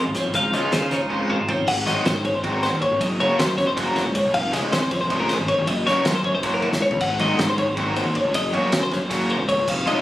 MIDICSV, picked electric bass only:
0, 0, Header, 1, 2, 480
1, 0, Start_track
1, 0, Tempo, 380952
1, 435, Time_signature, 7, 3, 24, 8
1, 12619, End_track
2, 0, Start_track
2, 0, Title_t, "Picked electric bass"
2, 0, Program_c, 0, 34
2, 68, Note_on_c, 0, 32, 77
2, 169, Note_off_c, 0, 32, 0
2, 314, Note_on_c, 0, 32, 86
2, 412, Note_off_c, 0, 32, 0
2, 426, Note_on_c, 0, 37, 85
2, 626, Note_off_c, 0, 37, 0
2, 671, Note_on_c, 0, 37, 89
2, 771, Note_off_c, 0, 37, 0
2, 910, Note_on_c, 0, 49, 96
2, 1108, Note_off_c, 0, 49, 0
2, 1143, Note_on_c, 0, 49, 72
2, 1246, Note_off_c, 0, 49, 0
2, 1263, Note_on_c, 0, 37, 87
2, 1661, Note_off_c, 0, 37, 0
2, 1749, Note_on_c, 0, 32, 86
2, 1850, Note_off_c, 0, 32, 0
2, 1982, Note_on_c, 0, 32, 91
2, 2086, Note_off_c, 0, 32, 0
2, 2112, Note_on_c, 0, 32, 106
2, 2309, Note_off_c, 0, 32, 0
2, 2360, Note_on_c, 0, 32, 92
2, 2456, Note_off_c, 0, 32, 0
2, 2602, Note_on_c, 0, 44, 100
2, 2796, Note_off_c, 0, 44, 0
2, 2830, Note_on_c, 0, 44, 78
2, 2930, Note_off_c, 0, 44, 0
2, 2956, Note_on_c, 0, 32, 97
2, 3348, Note_off_c, 0, 32, 0
2, 3437, Note_on_c, 0, 39, 87
2, 3534, Note_off_c, 0, 39, 0
2, 3672, Note_on_c, 0, 32, 92
2, 3771, Note_off_c, 0, 32, 0
2, 3790, Note_on_c, 0, 30, 100
2, 3988, Note_off_c, 0, 30, 0
2, 4040, Note_on_c, 0, 30, 91
2, 4136, Note_off_c, 0, 30, 0
2, 4275, Note_on_c, 0, 42, 114
2, 4471, Note_off_c, 0, 42, 0
2, 4511, Note_on_c, 0, 42, 84
2, 4611, Note_off_c, 0, 42, 0
2, 4638, Note_on_c, 0, 30, 86
2, 5028, Note_off_c, 0, 30, 0
2, 5112, Note_on_c, 0, 37, 86
2, 5211, Note_off_c, 0, 37, 0
2, 5357, Note_on_c, 0, 36, 99
2, 5454, Note_off_c, 0, 36, 0
2, 5473, Note_on_c, 0, 29, 96
2, 5669, Note_off_c, 0, 29, 0
2, 5716, Note_on_c, 0, 29, 87
2, 5813, Note_off_c, 0, 29, 0
2, 5958, Note_on_c, 0, 41, 96
2, 6152, Note_off_c, 0, 41, 0
2, 6190, Note_on_c, 0, 41, 85
2, 6289, Note_off_c, 0, 41, 0
2, 6319, Note_on_c, 0, 29, 99
2, 6709, Note_off_c, 0, 29, 0
2, 6796, Note_on_c, 0, 32, 87
2, 6893, Note_off_c, 0, 32, 0
2, 7035, Note_on_c, 0, 32, 107
2, 7132, Note_off_c, 0, 32, 0
2, 7151, Note_on_c, 0, 30, 103
2, 7348, Note_off_c, 0, 30, 0
2, 7398, Note_on_c, 0, 30, 87
2, 7494, Note_off_c, 0, 30, 0
2, 7642, Note_on_c, 0, 42, 116
2, 7834, Note_off_c, 0, 42, 0
2, 7867, Note_on_c, 0, 42, 90
2, 7967, Note_off_c, 0, 42, 0
2, 7994, Note_on_c, 0, 30, 89
2, 8386, Note_off_c, 0, 30, 0
2, 8476, Note_on_c, 0, 37, 84
2, 8573, Note_off_c, 0, 37, 0
2, 8716, Note_on_c, 0, 37, 95
2, 8813, Note_off_c, 0, 37, 0
2, 8831, Note_on_c, 0, 32, 95
2, 9028, Note_off_c, 0, 32, 0
2, 9071, Note_on_c, 0, 32, 87
2, 9170, Note_off_c, 0, 32, 0
2, 9311, Note_on_c, 0, 44, 102
2, 9508, Note_off_c, 0, 44, 0
2, 9550, Note_on_c, 0, 44, 84
2, 9649, Note_off_c, 0, 44, 0
2, 9670, Note_on_c, 0, 32, 89
2, 10063, Note_off_c, 0, 32, 0
2, 10145, Note_on_c, 0, 39, 96
2, 10246, Note_off_c, 0, 39, 0
2, 10392, Note_on_c, 0, 37, 97
2, 10490, Note_off_c, 0, 37, 0
2, 10513, Note_on_c, 0, 30, 103
2, 10709, Note_off_c, 0, 30, 0
2, 10751, Note_on_c, 0, 30, 96
2, 10850, Note_off_c, 0, 30, 0
2, 10996, Note_on_c, 0, 42, 103
2, 11191, Note_off_c, 0, 42, 0
2, 11237, Note_on_c, 0, 42, 90
2, 11333, Note_off_c, 0, 42, 0
2, 11347, Note_on_c, 0, 30, 86
2, 11742, Note_off_c, 0, 30, 0
2, 11827, Note_on_c, 0, 37, 84
2, 11928, Note_off_c, 0, 37, 0
2, 12067, Note_on_c, 0, 37, 100
2, 12168, Note_off_c, 0, 37, 0
2, 12194, Note_on_c, 0, 29, 103
2, 12390, Note_off_c, 0, 29, 0
2, 12421, Note_on_c, 0, 29, 94
2, 12525, Note_off_c, 0, 29, 0
2, 12619, End_track
0, 0, End_of_file